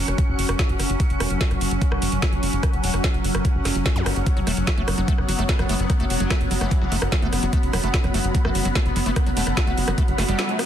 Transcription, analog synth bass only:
0.08 F#1
0.28 F#1
0.39 F#1
0.49 F#1
0.69 F#1
0.79 F#1
0.90 F#1
1.10 F#1
1.20 E1
1.30 F#1
1.51 F#1
1.61 F#1
1.71 F#1
1.92 F#1
2.02 F#1
2.12 F#1
2.33 F#1
2.43 F#1
2.53 F#1
2.73 F#1
2.84 E1
2.94 F#1
3.14 F#1
3.24 F#1
3.35 F#1
3.55 F#1
3.65 F#1
3.75 F#1
3.96 F#2
4.06 G1
4.16 F#1
4.37 F#1
4.47 E1
4.57 F#1
4.78 F#1
4.88 F#1
4.98 F#1
5.18 F#1
5.29 F#1
5.39 F#1
5.59 F#1
5.69 F#1
5.80 F#1
6.00 F#1
6.10 E1
6.20 F#1
6.41 F#1
6.51 F#1
6.61 F#1
6.82 F#1
6.92 F#1
7.02 F#1
7.22 F#1
7.33 F#1
7.43 F#1
7.63 F#1
7.73 E1
7.84 F#1
8.04 F#1
8.14 F#1
8.24 F#1
8.45 F#1
8.55 F#1
8.65 F#1
8.86 F#1
8.96 F#1
9.06 F#1
9.26 F#1
9.37 E1
9.47 F#1
9.67 F#1
9.77 F#1
9.88 F#1
10.08 G1
10.18 F#1
10.28 F#1

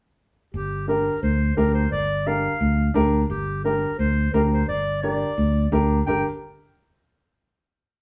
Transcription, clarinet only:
0.54 G4
0.88 A#4
1.23 C5
1.57 A#4
1.74 C5
1.92 D5
2.27 F5
3.30 G4
3.65 A#4
3.99 C5
4.33 A#4
4.52 C5
4.69 D5
5.02 D5
6.06 G5

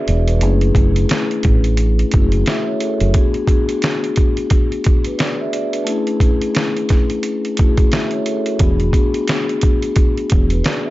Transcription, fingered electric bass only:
0.08 E1
0.42 F#1
0.75 F#1
1.45 A1
2.14 F#1
3.01 F#1
8.60 E1
10.32 E1

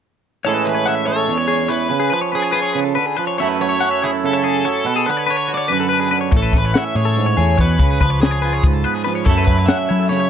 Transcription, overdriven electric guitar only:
0.47 A4
0.66 B4
0.88 E5
1.08 C#5
1.69 B4
2.14 B4
2.35 G#4
3.40 E5
3.62 C#5
4.03 G#4
4.26 A4
4.87 A4
5.11 B4
5.30 C#5
5.54 D5
5.73 B4
6.37 A4
6.58 B4
6.77 E5
6.97 C#5
7.61 B4
8.02 B4
8.21 G#4
9.25 A4
9.46 B4
9.66 E5
10.09 C#5

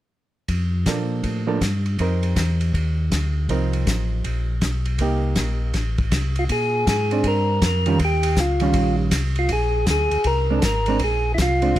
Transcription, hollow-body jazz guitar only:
0.87 F3 A#3 D4 A4
1.47 F3 A#3 D4 A4
2.00 C4 D#4 A#4
3.50 F3 C4 D#4 A#4
5.01 A#3 D#4 G4
7.12 C4 D4
7.86 D#3 G3 C#4 F4
8.61 D#3 G3 C#4 F4
10.50 G#3 C4 D4
10.88 G#3 C4 D4
11.62 G#3 C4 D4

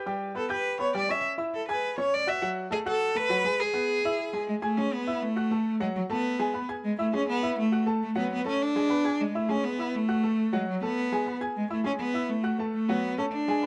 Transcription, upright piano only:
0.06 G3 G4 G5
0.35 B3 B4 B5
0.50 G4 G5 G6
0.79 B3 B4 B5
0.94 G3 G4 G5
1.09 C#4 C#5 C#6
1.38 E4 E5 E6
1.68 G#4 G#5 G#6
1.98 C#4 C#5 C#6
2.27 F#4 F#5 F#6
2.42 F#3 F#4 F#5
2.70 A3 A4 A5
2.86 F#4 F#5 F#6
3.15 A3 A4 A5
3.30 F#3 F#4 F#5
3.44 G#3 G#4 G#5
3.74 B3 B4 B5
4.05 E4 E5 E6
4.33 G#3 G#4 G#5
4.62 G#4 G#5 G#6
4.77 G#3 G#4 G#5
5.07 E4 E5 E6
5.36 F#4 F#5 F#6
5.51 A3 A4 A5
5.80 F#3 F#4 F#5
6.09 A3 A4 A5
6.39 G#3 G#4 G#5
6.54 B3 B4 B5
6.69 G#4 G#5 G#6
6.98 E4 E5 E6
7.13 G#3 G#4 G#5
7.43 E4 E5 E6
7.72 F#4 F#5 F#6
7.86 A3 A4 A5
8.15 F#3 F#4 F#5
8.45 A3 A4 A5
8.75 G#3 G#4 G#5
8.90 B3 B4 B5
9.04 G#4 G#5 G#6
9.35 E4 E5 E6
9.49 G#3 G#4 G#5
9.79 E4 E5 E6
10.09 F#4 F#5 F#6
10.23 A3 A4 A5
10.53 F#3 F#4 F#5
10.82 A3 A4 A5
11.12 G#3 G#4 G#5
11.26 B3 B4 B5
11.41 G#4 G#5 G#6
11.70 E4 E5 E6
11.84 G#3 G#4 G#5
12.14 E4 E5 E6
12.43 F#4 F#5 F#6
12.59 A3 A4 A5
12.89 F#3 F#4 F#5
13.18 A3 A4 A5
13.48 G#3 G#4 G#5
13.62 B3 B4 B5

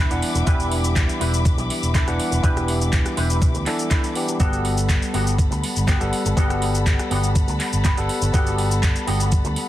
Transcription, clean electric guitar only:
Already playing: D4
0.00 E4 G4 B4
0.22 muted clean electric guitar stroke
0.35 muted clean electric guitar stroke
0.46 D4 E4 G4 B4
1.20 D4 E4 G4 B4
1.58 muted clean electric guitar stroke
1.69 muted clean electric guitar stroke
1.94 D4 E4 G4 A4
2.19 muted clean electric guitar stroke
2.31 muted clean electric guitar stroke
2.43 D4 E4 G4 B4
3.17 D4 E4 G4 B4
3.54 muted clean electric guitar stroke
3.66 muted clean electric guitar stroke
3.90 D4 E4 G4 B4
4.15 muted clean electric guitar stroke
4.28 muted clean electric guitar stroke
4.39 B3 F#4 G4 A4
5.13 B3 F#4 G4 A4
5.51 muted clean electric guitar stroke
5.63 muted clean electric guitar stroke
5.87 B3 F#4 G4 A4
6.12 muted clean electric guitar stroke
6.25 muted clean electric guitar stroke
6.37 B3 F#4 G4 A4
7.10 B3 F#4 G4 A4
7.48 muted clean electric guitar stroke
7.60 muted clean electric guitar stroke
7.84 B3 F#4 G4 B4
8.09 muted clean electric guitar stroke
8.21 muted clean electric guitar stroke
8.33 B3 F#4 G4 A4
9.07 B3 F#4 G4 A4
9.44 muted clean electric guitar stroke
9.56 muted clean electric guitar stroke

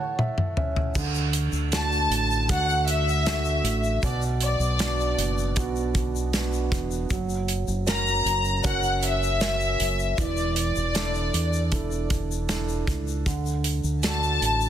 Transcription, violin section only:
Already playing: C#5
1.75 A5
2.52 F#5
2.90 E5
4.05 D5
4.43 D5
7.89 A#5
8.67 F#5
9.05 E5
10.13 E5
10.20 D5
10.59 D5
14.05 A5

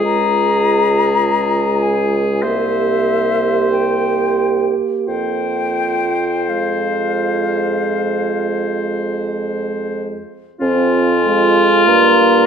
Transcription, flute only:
0.04 A#5
1.83 G#5
2.43 E5
3.72 G5
5.07 G5
6.49 F5
10.61 G#5
11.87 A#5

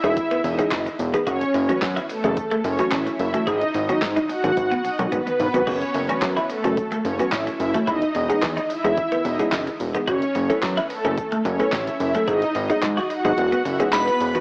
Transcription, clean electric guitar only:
0.04 C#4
0.31 B3
0.44 muted clean electric guitar stroke
0.59 C#4
0.72 D#4
0.86 muted clean electric guitar stroke
1.14 B3
1.27 F#4
1.54 muted clean electric guitar stroke
1.69 C#4
1.96 E4
2.09 muted clean electric guitar stroke
2.24 C#4
2.51 A3
2.64 muted clean electric guitar stroke
2.79 B3
2.92 C#4
3.06 muted clean electric guitar stroke
3.34 A3
3.47 G#4
3.74 muted clean electric guitar stroke
3.89 C#4
4.17 D#4
4.30 muted clean electric guitar stroke
4.44 C#4
4.72 B3
4.85 muted clean electric guitar stroke
4.99 C#4
5.12 B3
5.27 muted clean electric guitar stroke
5.54 B3
5.67 F#4
5.95 muted clean electric guitar stroke
6.09 C#4
6.37 E4
6.50 muted clean electric guitar stroke
6.64 C#4
6.92 A3
7.05 muted clean electric guitar stroke
7.19 B3
7.32 C#4
7.47 muted clean electric guitar stroke
7.74 A3
7.87 E4
8.15 muted clean electric guitar stroke
8.29 C#4
8.57 D#4
8.70 muted clean electric guitar stroke
8.85 C#4
9.12 B3
9.25 muted clean electric guitar stroke
9.40 C#4
9.53 D#4
9.67 muted clean electric guitar stroke
9.95 B3
10.08 F#4
10.35 muted clean electric guitar stroke
10.50 C#4
10.77 E4
10.90 muted clean electric guitar stroke
11.05 C#4
11.32 A3
11.45 muted clean electric guitar stroke
11.60 B3
11.73 C#4
11.87 muted clean electric guitar stroke
12.15 A3
12.28 G#4
12.55 muted clean electric guitar stroke
12.70 D#4
12.97 F#4
13.10 muted clean electric guitar stroke
13.25 D#4
13.52 B3
13.65 muted clean electric guitar stroke
13.80 C#4
13.93 D#4
14.07 muted clean electric guitar stroke
14.35 B3

